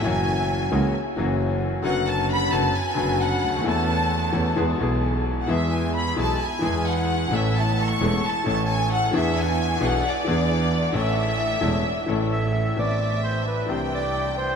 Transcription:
<<
  \new Staff \with { instrumentName = "Violin section" } { \time 4/4 \key a \major \tempo 4 = 132 gis''2 r2 | fis''8 a''8 b''8 a''8 gis''4 fis''4 | a''2 r4. r16. fis''32 | e''8 gis''8 b''8 a''8 gis''4 fis''4 |
e''8 a''8 cis'''4 a''8 a''16. a''32 gis''8 fis''8 | e''8 gis''4 fis''8 d''2 | e''2. r4 | \key a \minor e''2 g''2 | }
  \new Staff \with { instrumentName = "Bandoneon" } { \time 4/4 \key a \major r1 | r1 | r1 | r1 |
r1 | r1 | r2. e''4 | \key a \minor d''4 c''8 b'8 c''8 d''4 c''8 | }
  \new Staff \with { instrumentName = "Grand piano" } { \clef bass \time 4/4 \key a \major << { <fis, e fis ais cis' fis'>4. <cis, cis e ais cis' fis'>8 r8 <fis, e fis ais cis' fis'>4. | <fis, d fis b fis'>4. <fis, d fis b fis'>8 r8 <fis, d fis b fis'>4. | <e, e a cis' a'>4. <e, e a cis' a'>8 <e, e gis b gis'>8 <b,, b, e gis b gis'>4. | <e, e gis b gis'>4. <b,, b, e gis b gis'>8 r8 <e, e gis b gis'>4. |
<a,, a, e a cis' a'>4. <e,, e, e a cis' a'>8 r8 <a,, a, e a cis' a'>4. | <e, e b d' gis'>4. <b,, b, e b d' gis'>8 r8 <e, e b d' gis'>4. | <a,, a, e a cis' a'>4. <e,, e, e a cis' a'>8 r8 <a,, a, e a cis' a'>4. | \key a \minor <a,, a, e b c' a'>2 <c, c e c' d' g'>2 | } \\ { r1 | r2. r8 r32 cis,32 d,32 dis,32 | r1 | r1 |
r1 | r1 | r1 | r1 | } >> }
  \new Staff \with { instrumentName = "Double bass" } { \clef bass \time 4/4 \key a \major fis,,4. cis,8 r8 fis,,4. | fis,,4. fis,,8 r8 fis,,4 d,8 | e,4. e,8 e,8 b,,4. | e,4. b,,8 r8 e,4. |
a,,4. e,,8 r8 a,,4. | e,4. b,,8 r8 e,4. | a,,4. e,,8 r8 a,,4. | \key a \minor a,,2 c,2 | }
>>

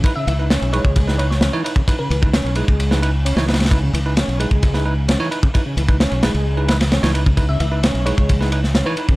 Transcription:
<<
  \new Staff \with { instrumentName = "Synth pluck" } { \time 4/4 \key cis \minor \tempo 4 = 131 r16 e''16 e''16 r8. cis''16 cis''16 r8 cis''16 cis''16 r4 | r16 b'8. r2. | r1 | r1 |
r16 e''16 e''16 r8. cis''16 cis''16 r4 r16 b'16 r8 | }
  \new Staff \with { instrumentName = "Tine electric piano" } { \time 4/4 \key cis \minor <dis' e' b'>16 r8 <dis' e' b'>16 r8 <dis' e' b'>16 r8 <dis' e' b'>16 <dis' e' b'>16 r8 <dis' e' cis''>16 <dis' e' b'>16 r16 | <dis' e' b'>16 r8 <dis' e' b'>16 r8 <dis' e' b'>16 r8 <dis' e' b'>16 <dis' e' b'>16 r8 <dis' e' cis''>16 <dis' e' b'>16 r16 | <dis' e' b'>16 r8 <dis' e' b'>16 r8 <dis' e' b'>16 r8 <dis' e' b'>16 <dis' e' b'>16 r8 <dis' e' cis''>16 <dis' e' b'>16 r16 | <dis' e' b'>16 r8 <dis' e' b'>16 r8 <dis' e' b'>16 r8 <dis' e' b'>16 <dis' e' b'>16 r8 <dis' e' cis''>16 <dis' e' b'>16 r16 |
<dis' e' b'>16 r8 <dis' e' b'>16 r8 <dis' e' b'>16 r8 <dis' e' b'>16 <dis' e' b'>16 r8 <dis' e' cis''>16 <dis' e' b'>16 r16 | }
  \new Staff \with { instrumentName = "Tonewheel organ" } { \clef bass \time 4/4 \key cis \minor r16 cis16 e16 r16 cis'8 gis4 r8 cis'16 e16 r16 cis16 | r16 cis16 e16 r16 cis'8 gis4 r8 cis'16 e16 r16 cis16 | r16 cis16 e16 r16 cis'8 gis4 r8 cis'16 e16 r16 cis16 | r16 cis16 e16 r16 cis'8 gis4 r8 cis'16 e16 r16 cis16 |
r16 cis16 e16 r16 cis'8 gis4 r8 cis'16 e16 r16 cis16 | }
  \new Staff \with { instrumentName = "Fingered electric bass" } { \clef bass \time 4/4 \key cis \minor r8 cis,8. b,,16 r16 cis,4. r8. | r8 cis,8. b,,16 r16 cis,4. cis,8.~ | cis,8 cis,8. b,,16 r16 cis,4. r8. | r8 cis,8. b,,16 r16 cis,4. cis,8.~ |
cis,8 cis,8. b,,16 r16 cis,4. r8. | }
  \new DrumStaff \with { instrumentName = "Drums" } \drummode { \time 4/4 <bd cymr>8 cymr8 <cymr sn>16 cymr16 cymr16 bd16 <bd cymr>16 sn16 cymr16 sn16 <cymr sn>8 cymr16 bd16 | <bd cymr>8 cymr16 bd16 <cymr sn>16 cymr16 cymr16 bd16 cymr16 sn16 cymr8 cymr16 sn16 <cymr sn>32 <cymr sn>32 <cymr sn>32 <cymr sn>32 | <bd cymr>8 cymr8 <cymr sn>16 cymr16 cymr16 bd16 <bd cymr>16 sn8. <cymr sn>8 cymr16 bd16 | <bd cymr>8 cymr16 bd16 <cymr sn>16 cymr16 <cymr sn>16 cymr16 r8 <cymr sn>16 <cymr sn>16 <cymr sn>16 <cymr sn>16 cymr16 bd16 |
<bd cymr>8 cymr8 <cymr sn>16 cymr16 cymr16 bd16 <bd cymr>16 sn16 cymr16 sn16 <cymr sn>8 cymr16 bd16 | }
>>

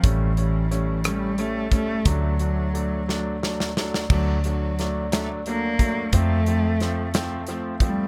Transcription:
<<
  \new Staff \with { instrumentName = "Grand piano" } { \time 6/8 \key d \phrygian \tempo 4. = 59 <g a cis'>8 <g a cis'>8 <g a cis'>8 <g a cis'>8 <g a cis'>8 <g a cis'>8 | <fis a d'>8 <fis a d'>8 <fis a d'>8 <fis a d'>8 <fis a d'>8 <fis a d'>8 | <fis a d'>8 <fis a d'>8 <fis a d'>8 <fis a d'>8 <fis a d'>8 <fis a d'>8 | <f a c'>8 <f a c'>8 <f a c'>8 <f a c'>8 <f a c'>8 <f a c'>8 | }
  \new Staff \with { instrumentName = "Cello" } { \clef bass \time 6/8 \key d \phrygian e4. g8 a8 a8 | fis2~ fis8 r8 | fis8 fis4 a8 bes4 | a2 r8 g8 | }
  \new Staff \with { instrumentName = "Fingered electric bass" } { \clef bass \time 6/8 \key d \phrygian a,,2. | d,2. | d,2. | f,2. | }
  \new DrumStaff \with { instrumentName = "Drums" } \drummode { \time 6/8 <hh bd>8 hh8 <hh ss>8 <hh ss>8 hh8 <hh bd>8 | <hh bd>8 hh8 hh8 sn8 sn16 sn16 sn16 sn16 | <cymc bd>8 hh8 <hh sn>8 <hh sn>8 hh8 <hh bd>8 | <hh bd>8 hh8 <hh sn>8 <hh sn>8 hh8 <hh bd>8 | }
>>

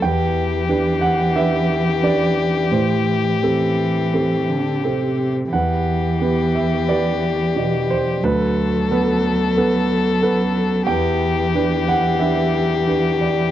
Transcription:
<<
  \new Staff \with { instrumentName = "Grand piano" } { \time 4/4 \key e \minor \tempo 4 = 89 << { g''4. fis''8 e''4 d''4 | c''2. r4 | fis''4. e''8 d''4. c''8 | b'2.~ b'8 r8 |
g''4. fis''8 e''4. d''8 | } \\ { e,4 <d' g' b'>4 <d' g' b'>4 <d' g' b'>4 | a,4 <c' g' a'>4 <c' g' a'>4 <c' g' a'>4 | e,4 <b g' b'>4 <b g' b'>4 <b, g' d''>4 | d,4 <b a' b'>4 <b a' b'>4 <b a' b'>4 |
e,4 <d' g' b'>4 <d' g' b'>4 <d' g' b'>4 | } >> }
  \new Staff \with { instrumentName = "Violin" } { \time 4/4 \key e \minor g'1~ | g'2.~ g'8 r8 | g'1 | a'1 |
g'1 | }
  \new Staff \with { instrumentName = "Cello" } { \clef bass \time 4/4 \key e \minor e1~ | e4 e4. d8 c4 | e1 | fis1 |
e1 | }
>>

